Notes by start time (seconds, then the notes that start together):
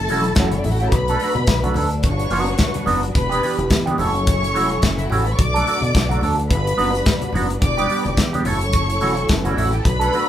Already playing: F#3 C#4 E4 A4 A5
0.08 E1 E3 A3 C#4 F#4, open hi-hat, muted conga
0.24 muted clean electric guitar stroke, closed hi-hat
0.35 F#1 E3 A3, kick, snare, closed hi-hat, muted conga
0.39 C#4 F#4
0.51 C#4 C#5, muted clean electric guitar stroke, closed hi-hat, high conga
0.58 D4 D5
0.64 A1 E4 E5, muted clean electric guitar stroke, open hi-hat, muted conga, low conga
0.71 F#4 F#5
0.79 E3 A3 C#4 F#4 G4 G5, closed hi-hat
0.85 A4 A5
0.91 B1 A3 B3 D4 B4 B5, kick, closed hi-hat
0.95 muted clean electric guitar stroke
1.08 F#3 A3 D4 A4, closed hi-hat
1.20 F#3 A3 D4, open hi-hat
1.24 F#4
1.35 B2, muted clean electric guitar stroke, closed hi-hat, high conga
1.47 B1, muted clean electric guitar stroke, kick, snare, closed hi-hat
1.63 F#3 A3 D4 F#4, closed hi-hat, high conga
1.74 D2 F#3 A3 D4 A4, open hi-hat, muted conga, low conga
1.91 muted clean electric guitar stroke, closed hi-hat
2.01 G1 G3 F#4 B4 C#5 C#6, kick, closed hi-hat, muted conga
2.19 muted clean electric guitar stroke, closed hi-hat
2.30 F#1 F#3 B3 D4 F#4, open hi-hat
2.46 muted clean electric guitar stroke, closed hi-hat
2.58 kick, snare, closed hi-hat
2.74 muted clean electric guitar stroke, closed hi-hat, high conga
2.86 F#1 F#3 B3 D4 F#4, open hi-hat, low conga
3.03 muted clean electric guitar stroke, closed hi-hat
3.15 E1 E3 B3 G4 B4 B5, muted clean electric guitar stroke, kick, closed hi-hat
3.30 E3 B3 D4 G4, closed hi-hat
3.42 E3 B3 D4 G4, open hi-hat, muted conga
3.58 E1, muted clean electric guitar stroke, closed hi-hat, high conga
3.70 E2, muted clean electric guitar stroke, kick, snare, closed hi-hat, muted conga
3.86 E3 B3 D4 G4, closed hi-hat, high conga
3.98 F#1 E3 F#3 A3 C#4 E4 A4 C#5 C#6, open hi-hat, muted conga, low conga
4.14 muted clean electric guitar stroke, closed hi-hat
4.27 kick, closed hi-hat
4.42 muted clean electric guitar stroke, closed hi-hat
4.54 E1 E3 A3 C#4 F#4, open hi-hat
4.71 muted clean electric guitar stroke, closed hi-hat
4.82 F#1, muted clean electric guitar stroke, kick, snare, closed hi-hat, muted conga
4.98 E4 E5, muted clean electric guitar stroke, closed hi-hat, high conga
5.04 F#4 F#5
5.10 A1 E3 A3 C#4 F#4 G4 G5, open hi-hat, muted conga, low conga
5.19 A4 A5
5.26 B4 B5, muted clean electric guitar stroke, closed hi-hat
5.31 C#5 C#6
5.38 B1 A3 B3 D4 D5 D6, muted clean electric guitar stroke, kick, closed hi-hat
5.54 F#3 A3 D4 A4, closed hi-hat
5.66 F#3 A3 D4 F#4, open hi-hat, muted conga
5.81 B2, muted clean electric guitar stroke, closed hi-hat, high conga
5.93 B1, muted clean electric guitar stroke, kick, closed hi-hat, muted conga
5.97 snare
6.09 F#3 A3 D4 F#4, closed hi-hat, high conga
6.21 D2 F#3 A3 D4 A4, open hi-hat, low conga
6.39 muted clean electric guitar stroke, closed hi-hat
6.49 G1 G3 F#4 B4 B5, kick, closed hi-hat
6.66 muted clean electric guitar stroke, closed hi-hat
6.77 F#1 F#3 B3 D4 F#4, open hi-hat
6.93 muted clean electric guitar stroke, closed hi-hat
7.06 kick, snare, closed hi-hat, muted conga
7.20 muted clean electric guitar stroke, closed hi-hat, high conga
7.33 F#1 F#3 B3 D4 F#4, open hi-hat, muted conga, low conga
7.49 muted clean electric guitar stroke, closed hi-hat
7.62 E1 E3 B3 G4 D5 D6, muted clean electric guitar stroke, kick, closed hi-hat
7.78 G3 B3 D4 G4, closed hi-hat
7.89 G3 B3 D4 G4, open hi-hat, muted conga
8.05 E1, muted clean electric guitar stroke, closed hi-hat, high conga
8.17 E2, muted clean electric guitar stroke, kick, snare, closed hi-hat, muted conga
8.33 G3 B3 D4 G4, closed hi-hat, high conga
8.45 F#1 E3 F#3 A3 C#4 E4 A4 C#5 C#6, open hi-hat, low conga
8.61 muted clean electric guitar stroke, closed hi-hat
8.73 kick, closed hi-hat, muted conga
8.89 muted clean electric guitar stroke, closed hi-hat
9.01 E1 E3 A3 C#4 F#4, open hi-hat, muted conga
9.16 muted clean electric guitar stroke, closed hi-hat
9.29 F#1, muted clean electric guitar stroke, kick, snare, closed hi-hat, muted conga
9.37 B3 B4
9.44 E3 A3 C#4 F#4 C#5, closed hi-hat, high conga
9.51 D4 D5
9.57 A1 E3 A3 C#4 E4 F#4 E5, open hi-hat, muted conga, low conga
9.64 F#4 F#5
9.72 G4 G5, muted clean electric guitar stroke, closed hi-hat
9.78 A4 A5
9.84 B1 A3 B3 D4 B4 B5, muted clean electric guitar stroke, kick, closed hi-hat
10.00 F#3 A3 D4 A4, closed hi-hat
10.13 F#3 A3 D4 F#4, open hi-hat, muted conga